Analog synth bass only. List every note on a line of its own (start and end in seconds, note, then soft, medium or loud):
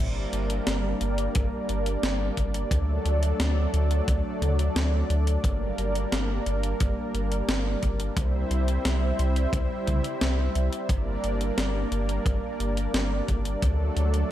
0.00 0.26 G1 loud
0.33 0.60 G1 medium
0.67 0.94 G1 medium
1.01 1.28 G1 medium
1.36 1.49 G1 medium
1.69 1.96 G1 medium
2.03 2.30 G1 loud
2.37 2.65 G1 medium
2.71 2.98 D2 medium
3.05 3.33 D2 medium
3.40 3.67 D2 medium
3.74 4.01 D2 medium
4.08 4.21 D2 loud
4.42 4.69 D2 medium
4.76 5.03 D2 loud
5.10 5.37 D2 loud
5.44 5.71 G1 medium
5.78 6.05 G1 medium
6.12 6.40 G1 medium
6.46 6.74 G1 loud
6.81 6.94 G1 loud
7.14 7.42 G1 medium
7.48 7.76 G1 loud
7.83 8.10 G1 medium
8.17 8.44 C2 medium
8.51 8.78 C2 medium
8.85 9.12 C2 medium
9.19 9.46 C2 medium
9.53 9.67 C2 medium
9.87 10.01 C2 loud
10.21 10.49 C2 medium
10.55 10.69 C2 medium
10.89 11.17 G1 loud
11.24 11.51 G1 medium
11.58 11.85 G1 medium
11.92 12.19 G1 medium
12.26 12.39 G1 loud
12.60 12.87 G1 medium
12.94 13.21 G1 loud
13.29 13.56 G1 medium
13.63 13.90 D2 medium
13.96 14.24 D2 medium